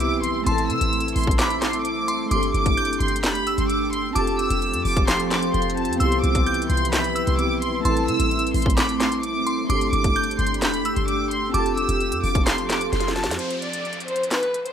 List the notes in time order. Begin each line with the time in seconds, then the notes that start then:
Already playing: C2 E3 G3 B3 E4 G4 B4 E6, impact
0.00 C4 E4 G4 D6, closed hi-hat
0.12 B1
0.23 C6, closed hi-hat
0.41 A3 C4
0.46 A1 A3 C4 E4 A5 C6, closed hi-hat
0.52 A4
0.58 closed hi-hat
0.70 C3 E6, closed hi-hat
0.81 A1, closed hi-hat
0.93 closed hi-hat
1.00 closed hi-hat
1.08 closed hi-hat
1.16 A1 C6, closed hi-hat, open hi-hat
1.24 kick, closed hi-hat
1.31 closed hi-hat
1.39 B5 D6, snare, clap, closed hi-hat
1.50 closed hi-hat
1.62 C6, snare, clap, closed hi-hat
1.73 closed hi-hat
1.85 D6, closed hi-hat
2.08 C6, closed hi-hat
2.26 A3 D4
2.31 G1 D4 G4 C6 D6, closed hi-hat
2.36 A4
2.43 closed hi-hat
2.54 G1 D6, closed hi-hat
2.66 kick, closed hi-hat
2.77 G6, closed hi-hat
2.85 closed hi-hat
2.93 closed hi-hat
3.00 G1 C6, closed hi-hat
3.08 closed hi-hat
3.16 closed hi-hat
3.23 F1 B5, snare, clap, closed hi-hat
3.35 closed hi-hat
3.41 G1
3.47 E6, closed hi-hat
3.58 G1 C6, closed hi-hat
3.70 D6, closed hi-hat
3.93 C6, closed hi-hat
4.11 C4 F4
4.15 F1 F3 C4 G4 A4 A5 D6, closed hi-hat
4.21 A4
4.27 closed hi-hat
4.39 E6, closed hi-hat
4.50 F1, closed hi-hat
4.62 closed hi-hat
4.73 F2, closed hi-hat
4.85 F1 D6, open hi-hat
4.97 kick, closed hi-hat
5.07 C6, snare, clap, closed hi-hat
5.20 closed hi-hat
5.31 D6, snare, clap, closed hi-hat
5.42 closed hi-hat
5.54 F1 C6, closed hi-hat
5.62 closed hi-hat
5.70 closed hi-hat
5.77 A5, closed hi-hat
5.85 F2, closed hi-hat
5.93 B3, closed hi-hat
5.99 C2 E3 G3 C4 E4 B4 C6 E6, closed hi-hat
6.06 G4
6.12 closed hi-hat
6.24 C2 D6, closed hi-hat
6.35 kick, closed hi-hat
6.46 G6, closed hi-hat
6.54 closed hi-hat
6.62 closed hi-hat
6.70 C2 C6, closed hi-hat
6.77 closed hi-hat
6.85 closed hi-hat
6.93 B5, snare, clap, closed hi-hat
7.04 closed hi-hat
7.15 E6, closed hi-hat
7.27 C2 C6, closed hi-hat
7.36 B3 C4 E4 D6, closed hi-hat
7.41 G4
7.50 B1
7.62 C6, closed hi-hat
7.80 A3 C4
7.85 A1 A3 C4 E4 A5 C6, closed hi-hat
7.90 A4
7.97 closed hi-hat
8.08 C3 E6, closed hi-hat
8.20 A1, closed hi-hat
8.31 closed hi-hat
8.39 closed hi-hat
8.47 closed hi-hat
8.54 A1 C6, closed hi-hat, open hi-hat
8.62 kick, closed hi-hat
8.70 closed hi-hat
8.77 B5 D6, snare, clap, closed hi-hat
8.89 closed hi-hat
9.00 C6, snare, clap, closed hi-hat
9.12 closed hi-hat
9.23 D6, closed hi-hat
9.47 C6, closed hi-hat
9.64 A3 D4
9.70 G1 D4 G4 C6 D6, closed hi-hat
9.75 A4
9.81 closed hi-hat
9.92 G1 D6, closed hi-hat
10.04 kick, closed hi-hat
10.16 G6, closed hi-hat
10.23 closed hi-hat
10.31 closed hi-hat
10.39 G1 C6, closed hi-hat
10.47 closed hi-hat
10.54 closed hi-hat
10.62 F1 B5, snare, clap, closed hi-hat
10.74 closed hi-hat
10.79 G1
10.85 E6, closed hi-hat
10.96 G1 C6, closed hi-hat
11.08 D6, closed hi-hat
11.31 C6, closed hi-hat
11.49 C4 F4
11.54 F1 F3 C4 G4 A4 A5 D6, closed hi-hat
11.60 A4
11.66 closed hi-hat
11.77 E6, closed hi-hat
11.89 F1, closed hi-hat
12.00 closed hi-hat
12.12 F2, closed hi-hat
12.24 F1 D6, open hi-hat
12.35 kick, closed hi-hat
12.46 C6, snare, clap, closed hi-hat
12.58 closed hi-hat
12.69 D6, snare, clap, closed hi-hat
12.81 closed hi-hat
12.93 F1 C6, snare, closed hi-hat
13.00 snare, closed hi-hat
13.08 snare, closed hi-hat
13.16 A5, snare, closed hi-hat
13.24 F2, snare, closed hi-hat
13.31 snare, closed hi-hat
13.39 C5, closed hi-hat, downlifter
13.50 closed hi-hat
13.62 D5, closed hi-hat
13.73 closed hi-hat
13.85 closed hi-hat
13.93 closed hi-hat
14.00 closed hi-hat
14.08 C5, closed hi-hat
14.16 closed hi-hat
14.23 closed hi-hat
14.31 B4, snare, clap, closed hi-hat
14.43 closed hi-hat
14.54 closed hi-hat
14.66 C5, closed hi-hat